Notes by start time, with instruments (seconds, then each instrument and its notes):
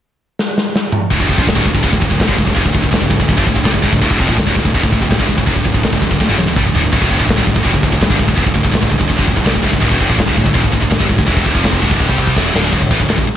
0.39 snare
0.58 snare
0.76 snare
0.92 mid tom
1.11 picked electric bass D1, distorted electric guitar D2 A2, kick, crash
1.19 picked electric bass E1, distorted electric guitar E2 B2, kick
1.29 picked electric bass F1, distorted electric guitar F2 C3, kick
1.37 picked electric bass A#1, distorted electric guitar A#2 F3, kick
1.47 picked electric bass D1, distorted electric guitar D2 A2, kick, snare, crash
1.55 picked electric bass D1, distorted electric guitar D2 A2, kick
1.65 picked electric bass D1, distorted electric guitar D2 A2, kick
1.75 picked electric bass D1, distorted electric guitar D2 A2, kick
1.83 picked electric bass E1, distorted electric guitar E2 B2, kick, crash
1.92 picked electric bass D1, distorted electric guitar D2 A2, kick
2.02 picked electric bass D1, distorted electric guitar D2 A2, kick
2.10 picked electric bass D1, distorted electric guitar D2 A2, kick
2.19 picked electric bass D1, distorted electric guitar D2 A2, kick, snare, crash
2.28 picked electric bass G1, distorted electric guitar G2 D3, kick
2.37 picked electric bass D1, distorted electric guitar D2 A2, kick
2.46 picked electric bass D1, distorted electric guitar D2 A2, kick
2.55 picked electric bass F1, distorted electric guitar F2 C3, kick, crash
2.64 picked electric bass D1, distorted electric guitar D2 A2, kick
2.73 picked electric bass D1, distorted electric guitar D2 A2, kick
2.83 picked electric bass D1, distorted electric guitar D2 A2, kick
2.92 picked electric bass D1, distorted electric guitar D2 A2, kick, snare, crash
3.00 picked electric bass D1, distorted electric guitar D2 A2, kick
3.10 picked electric bass D1, distorted electric guitar D2 A2, kick
3.20 picked electric bass D1, distorted electric guitar D2 A2, kick
3.29 picked electric bass D1, distorted electric guitar D2 A2, kick, crash
3.37 picked electric bass G1, distorted electric guitar G2 D3, kick
3.46 picked electric bass D1, distorted electric guitar D2 A2, kick
3.55 picked electric bass D1, distorted electric guitar D2 A2, kick
3.64 picked electric bass C2, distorted electric guitar C3 G3, kick, snare, crash
3.73 picked electric bass D1, distorted electric guitar D2 A2, kick
3.82 picked electric bass D1, distorted electric guitar D2 A2, kick
3.92 picked electric bass D1, distorted electric guitar D2 A2, kick
4.01 picked electric bass D1, distorted electric guitar D2 A2, kick, crash
4.10 picked electric bass E1, distorted electric guitar E2 B2, kick
4.20 picked electric bass F1, distorted electric guitar F2 C3, kick
4.29 picked electric bass A#1, distorted electric guitar A#2 F3, kick
4.38 picked electric bass D1, distorted electric guitar D2 A2, kick, snare, crash
4.46 picked electric bass D1, distorted electric guitar D2 A2, kick
4.56 picked electric bass D1, distorted electric guitar D2 A2, kick
4.65 picked electric bass D1, distorted electric guitar D2 A2, kick
4.74 picked electric bass E1, distorted electric guitar E2 B2, kick, crash
4.83 picked electric bass D1, distorted electric guitar D2 A2, kick
4.92 picked electric bass D1, distorted electric guitar D2 A2, kick
5.02 picked electric bass D1, distorted electric guitar D2 A2, kick
5.11 picked electric bass D1, distorted electric guitar D2 A2, kick, snare, crash
5.19 picked electric bass G1, distorted electric guitar G2 D3, kick
5.29 picked electric bass D1, distorted electric guitar D2 A2, kick
5.37 picked electric bass D1, distorted electric guitar D2 A2, kick
5.46 picked electric bass F1, distorted electric guitar F2 C3, kick, crash
5.55 picked electric bass D1, distorted electric guitar D2 A2, kick
5.64 picked electric bass D1, distorted electric guitar D2 A2, kick
5.74 picked electric bass D1, distorted electric guitar D2 A2, kick
5.83 picked electric bass D1, distorted electric guitar D2 A2, kick, snare, crash
5.92 picked electric bass D1, distorted electric guitar D2 A2, kick
6.02 picked electric bass D1, distorted electric guitar D2 A2, kick
6.11 picked electric bass D1, distorted electric guitar D2 A2, kick
6.20 picked electric bass D1, distorted electric guitar D2 A2, kick, snare
6.29 picked electric bass G1, distorted electric guitar G2 D3
6.38 picked electric bass D1, distorted electric guitar D2 A2, high tom
6.47 picked electric bass D1, distorted electric guitar D2 A2
6.56 picked electric bass C2, distorted electric guitar C3 G3, kick, mid tom
6.64 picked electric bass D1, distorted electric guitar D2 A2
6.74 picked electric bass D1, distorted electric guitar D2 A2, floor tom
6.83 picked electric bass D1, distorted electric guitar D2 A2
6.92 picked electric bass D1, distorted electric guitar D2 A2, kick, crash
7.01 picked electric bass E1, distorted electric guitar E2 B2, kick
7.10 picked electric bass F1, distorted electric guitar F2 C3, kick
7.18 picked electric bass A#1, distorted electric guitar A#2 F3, kick
7.28 picked electric bass D1, distorted electric guitar D2 A2, kick, snare, crash
7.37 picked electric bass D1, distorted electric guitar D2 A2, kick
7.46 picked electric bass D1, distorted electric guitar D2 A2, kick
7.55 picked electric bass D1, distorted electric guitar D2 A2, kick
7.64 picked electric bass E1, distorted electric guitar E2 B2, kick, crash
7.74 picked electric bass D1, distorted electric guitar D2 A2, kick
7.83 picked electric bass D1, distorted electric guitar D2 A2, kick
7.92 picked electric bass D1, distorted electric guitar D2 A2, kick
8.00 picked electric bass D1, distorted electric guitar D2 A2, kick, snare, crash
8.10 picked electric bass G1, distorted electric guitar G2 D3, kick
8.18 picked electric bass D1, distorted electric guitar D2 A2, kick
8.28 picked electric bass D1, distorted electric guitar D2 A2, kick
8.36 picked electric bass F1, distorted electric guitar F2 C3, kick, crash
8.45 picked electric bass D1, distorted electric guitar D2 A2, kick
8.54 picked electric bass D1, distorted electric guitar D2 A2, kick
8.63 picked electric bass D1, distorted electric guitar D2 A2, kick
8.72 picked electric bass D1, distorted electric guitar D2 A2, kick, snare, crash
8.81 picked electric bass D1, distorted electric guitar D2 A2, kick
8.90 picked electric bass D1, distorted electric guitar D2 A2, kick
8.99 picked electric bass D1, distorted electric guitar D2 A2, kick
9.08 picked electric bass D1, distorted electric guitar D2 A2, kick, crash
9.17 picked electric bass G1, distorted electric guitar G2 D3, kick
9.27 picked electric bass D1, distorted electric guitar D2 A2, kick
9.36 picked electric bass D1, distorted electric guitar D2 A2, kick
9.45 picked electric bass C2, distorted electric guitar C3 G3, kick, snare, crash
9.54 picked electric bass D1, distorted electric guitar D2 A2, kick
9.63 picked electric bass D1, distorted electric guitar D2 A2, kick
9.72 picked electric bass D1, distorted electric guitar D2 A2, kick
9.80 picked electric bass D1, distorted electric guitar D2 A2, kick, crash
9.90 picked electric bass E1, distorted electric guitar E2 B2, kick
9.99 picked electric bass F1, distorted electric guitar F2 C3, kick
10.08 picked electric bass A#1, distorted electric guitar A#2 F3, kick
10.18 picked electric bass D1, distorted electric guitar D2 A2, kick, snare, crash
10.27 picked electric bass D1, distorted electric guitar D2 A2, kick
10.36 picked electric bass D1, distorted electric guitar D2 A2, kick
10.46 picked electric bass D1, distorted electric guitar D2 A2, kick
10.54 picked electric bass E1, distorted electric guitar E2 B2, kick, crash
10.63 picked electric bass D1, distorted electric guitar D2 A2, kick
10.72 picked electric bass D1, distorted electric guitar D2 A2, kick
10.81 picked electric bass D1, distorted electric guitar D2 A2, kick
10.90 picked electric bass D1, distorted electric guitar D2 A2, kick, snare, crash
10.99 picked electric bass G1, distorted electric guitar G2 D3, kick
11.09 picked electric bass D1, distorted electric guitar D2 A2, kick
11.18 picked electric bass D1, distorted electric guitar D2 A2, kick
11.26 picked electric bass E1, distorted electric guitar E2 B2 E3, kick, crash
11.37 kick
11.45 picked electric bass D1, distorted electric guitar D2 A2, kick
11.54 picked electric bass F1, distorted electric guitar F2 C3 F3, kick
11.64 kick, snare, crash
11.73 kick
11.81 picked electric bass D1, distorted electric guitar D2 A2 D3, kick
11.91 kick
12.00 kick, crash
12.08 picked electric bass C2, distorted electric guitar C3 G3 C4, kick
12.18 kick
12.27 kick
12.36 picked electric bass E1, distorted electric guitar E2 B2 E3, kick, snare
12.54 picked electric bass D1, distorted electric guitar D2 A2 D3, snare
12.72 picked electric bass D1, distorted electric guitar D2 A2, kick, crash
12.81 picked electric bass D1, distorted electric guitar D2 A2, kick
12.91 picked electric bass A1, distorted electric guitar A2 E3, kick
13.00 picked electric bass D1, distorted electric guitar D2 A2, kick
13.07 picked electric bass D1, distorted electric guitar D2 A2, snare, open hi-hat
13.18 picked electric bass D1, distorted electric guitar D2 A2, kick
13.26 muted picked electric bass stroke, muted distorted electric guitar stroke